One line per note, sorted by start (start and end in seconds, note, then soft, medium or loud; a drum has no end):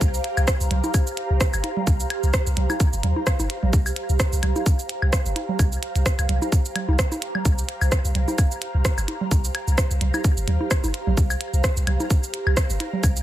0.00 0.19 C2 loud
0.00 13.23 G4 medium
0.00 13.23 C5 medium
0.00 13.23 F5 medium
0.00 13.23 A#5 medium
0.00 kick loud
0.00 shaker medium
0.14 shaker soft
0.24 closed hi-hat medium
0.37 0.45 C2 loud
0.37 high woodblock medium
0.37 shaker soft
0.48 kick loud
0.48 cross-stick loud
0.48 shaker medium
0.60 0.68 C2 loud
0.60 shaker soft
0.71 0.80 C2 medium
0.71 closed hi-hat medium
0.71 low conga medium
0.84 low bongo medium
0.84 shaker soft
0.94 kick loud
0.94 high woodblock medium
0.94 shaker medium
1.07 shaker soft
1.17 closed hi-hat medium
1.30 1.38 C2 medium
1.41 kick loud
1.41 cross-stick medium
1.41 shaker medium
1.53 1.61 G1 medium
1.53 high woodblock medium
1.53 shaker soft
1.64 closed hi-hat medium
1.64 low bongo medium
1.77 low conga medium
1.87 2.05 C2 loud
1.87 kick loud
1.87 shaker medium
2.00 shaker soft
2.10 closed hi-hat medium
2.10 high woodblock medium
2.23 2.31 C2 loud
2.23 shaker soft
2.34 kick loud
2.34 cross-stick medium
2.34 shaker medium
2.47 2.54 C2 medium
2.47 shaker soft
2.57 2.67 C2 medium
2.57 closed hi-hat loud
2.57 low conga medium
2.70 low bongo medium
2.70 high woodblock medium
2.70 shaker soft
2.80 kick loud
2.80 shaker medium
2.93 3.01 G1 medium
2.93 shaker soft
3.03 3.13 D#2 loud
3.03 closed hi-hat medium
3.03 low conga medium
3.16 low bongo medium
3.27 kick loud
3.27 cross-stick medium
3.27 high woodblock medium
3.27 shaker medium
3.39 3.47 G1 medium
3.39 low bongo medium
3.39 shaker soft
3.50 closed hi-hat loud
3.63 3.71 A#1 medium
3.63 low conga medium
3.73 3.91 C2 loud
3.73 kick loud
3.73 shaker medium
3.86 high woodblock medium
3.86 shaker soft
3.96 closed hi-hat loud
4.09 4.17 C2 loud
4.09 shaker soft
4.20 kick loud
4.20 cross-stick medium
4.20 shaker medium
4.33 4.40 C2 loud
4.33 shaker soft
4.43 4.53 C2 medium
4.43 closed hi-hat loud
4.43 low conga medium
4.43 high woodblock medium
4.56 low bongo medium
4.56 shaker soft
4.66 kick loud
4.66 shaker medium
4.79 shaker soft
4.89 closed hi-hat medium
5.02 5.10 C2 medium
5.02 high woodblock medium
5.13 kick loud
5.13 cross-stick medium
5.13 shaker medium
5.26 5.33 G1 medium
5.26 shaker soft
5.36 closed hi-hat loud
5.36 low bongo medium
5.49 low conga medium
5.59 5.77 C2 loud
5.59 kick loud
5.59 high woodblock medium
5.59 shaker medium
5.72 shaker soft
5.83 closed hi-hat medium
5.95 6.03 C2 loud
5.95 closed hi-hat soft
5.95 shaker soft
6.06 kick loud
6.06 cross-stick medium
6.06 shaker medium
6.19 6.26 C2 loud
6.19 closed hi-hat soft
6.19 high woodblock medium
6.19 shaker soft
6.29 6.39 C2 medium
6.29 closed hi-hat loud
6.29 low conga medium
6.42 low bongo medium
6.42 shaker soft
6.52 kick loud
6.52 shaker medium
6.65 shaker soft
6.76 closed hi-hat medium
6.76 low conga medium
6.76 high woodblock medium
6.88 6.96 C2 medium
6.88 low bongo medium
6.99 kick loud
6.99 cross-stick medium
6.99 shaker medium
7.12 low bongo medium
7.12 shaker soft
7.22 closed hi-hat loud
7.35 low conga medium
7.35 high woodblock medium
7.45 7.63 C2 loud
7.45 kick loud
7.45 shaker medium
7.58 shaker soft
7.69 closed hi-hat medium
7.81 7.89 C2 loud
7.81 high woodblock medium
7.81 shaker soft
7.92 kick loud
7.92 cross-stick medium
7.92 shaker medium
8.05 8.12 C2 medium
8.05 shaker soft
8.15 8.25 C2 medium
8.15 closed hi-hat medium
8.15 low conga medium
8.28 low bongo medium
8.28 shaker soft
8.38 kick loud
8.38 high woodblock medium
8.38 shaker medium
8.51 shaker soft
8.62 closed hi-hat medium
8.74 8.82 C2 medium
8.85 kick loud
8.85 cross-stick medium
8.85 shaker medium
8.98 9.05 G1 medium
8.98 high woodblock medium
8.98 shaker soft
9.08 closed hi-hat medium
9.08 low bongo medium
9.21 low conga medium
9.31 9.49 C2 loud
9.31 kick loud
9.31 shaker medium
9.44 shaker soft
9.55 closed hi-hat medium
9.55 high woodblock medium
9.68 9.75 C2 loud
9.68 shaker soft
9.78 kick loud
9.78 cross-stick medium
9.78 shaker medium
9.91 9.98 C2 medium
9.91 shaker soft
10.01 10.11 C2 medium
10.01 closed hi-hat medium
10.01 low conga medium
10.14 low bongo medium
10.14 high woodblock medium
10.14 shaker soft
10.24 kick loud
10.24 shaker medium
10.37 10.45 G1 medium
10.37 shaker soft
10.48 10.57 D#2 loud
10.48 closed hi-hat medium
10.48 low conga medium
10.61 low bongo medium
10.71 kick loud
10.71 cross-stick medium
10.71 high woodblock medium
10.71 shaker medium
10.84 10.91 G1 medium
10.84 low bongo medium
10.84 shaker soft
10.94 closed hi-hat medium
11.07 11.15 A#1 loud
11.07 low conga medium
11.17 11.35 C2 loud
11.17 kick loud
11.17 shaker medium
11.30 high woodblock medium
11.30 shaker soft
11.41 closed hi-hat medium
11.53 11.61 C2 loud
11.53 shaker soft
11.64 kick loud
11.64 cross-stick medium
11.64 shaker medium
11.77 11.84 C2 loud
11.77 shaker soft
11.87 11.97 C2 medium
11.87 closed hi-hat medium
11.87 low conga medium
11.87 high woodblock medium
12.00 low bongo medium
12.00 shaker soft
12.10 kick loud
12.10 shaker medium
12.23 shaker soft
12.34 closed hi-hat medium
12.47 12.54 C2 medium
12.47 high woodblock medium
12.57 kick loud
12.57 cross-stick medium
12.57 shaker medium
12.70 12.77 G1 medium
12.70 shaker soft
12.80 closed hi-hat medium
12.80 low bongo soft
12.93 low conga medium
13.03 13.21 C2 loud
13.03 kick loud
13.03 high woodblock medium
13.03 shaker medium
13.16 shaker soft